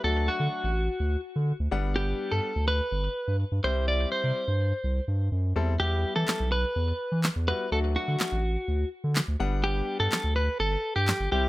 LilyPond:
<<
  \new Staff \with { instrumentName = "Clean electric guitar" } { \time 4/4 \key g \major \tempo 4 = 125 a'8 fis'2 r4. | g'8. a'8. b'4. r8 c''8 | d''8 c''2 r4. | g'8. a'8. b'4. r8 b'8 |
a'8 fis'2 r4. | g'8. a'8. b'8 a'8. g'8. g'8 | }
  \new Staff \with { instrumentName = "Grand piano" } { \time 4/4 \key g \major <fis a d' fis'>4. r2 <g b d' fis''>8~ | <g b d' fis''>4 r2 r8 <g c' e' g'>8~ | <g c' e' g'>4 r2 r8 <g c' e' a'>8 | <g b e' g'>4. r2 <g b e' fis'>8 |
<fis a d' fis'>4. r2 <g b d' fis''>8~ | <g b d' fis''>4 r2 r8 <g c' e' g'>8 | }
  \new Staff \with { instrumentName = "Sub bass" } { \clef bass \time 4/4 \key g \major d,8. d16 r16 a,,8. d,8 r16 d8 d,16 g,,8~ | g,,8. g,16 r16 d,8. g,,8 r16 g,8 g,16 c,8~ | c,8. c16 r16 g,8. c,8 g,8 fis,8 e,8 | e,8. e16 r16 b,,8. e,8 r16 e8 e,8 r16 |
d,8. d16 r16 a,,8. d,8 r16 d8 d,16 g,,8~ | g,,8. g,16 r16 d,8. g,,8 r16 g,8 g,,16 c,8 | }
  \new DrumStaff \with { instrumentName = "Drums" } \drummode { \time 4/4 r4 r4 r4 r4 | r4 r4 r4 r4 | r4 r4 r4 r4 | r4 <hc sn>4 r4 <hc sn>4 |
r4 <hc sn>4 r4 <hc sn>4 | r4 <hc sn>4 r4 <hc sn>4 | }
>>